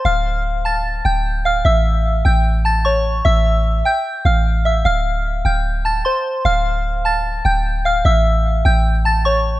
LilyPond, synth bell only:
\new Staff \with { instrumentName = "Synth bell" } { \time 4/4 \key d \minor \tempo 4 = 150 <f'' f'''>4. <a'' a'''>4 <g'' g'''>4 <f'' f'''>8 | <e'' e'''>4. <g'' g'''>8 r8 <a'' a'''>8 <cis'' cis'''>4 | <e'' e'''>4. <g'' g'''>4 <f'' f'''>4 <e'' e'''>8 | <f'' f'''>4. <g'' g'''>8 r8 <a'' a'''>8 <c'' c'''>4 |
<f'' f'''>4. <a'' a'''>4 <g'' g'''>4 <f'' f'''>8 | <e'' e'''>4. <g'' g'''>8 r8 <a'' a'''>8 <cis'' cis'''>4 | }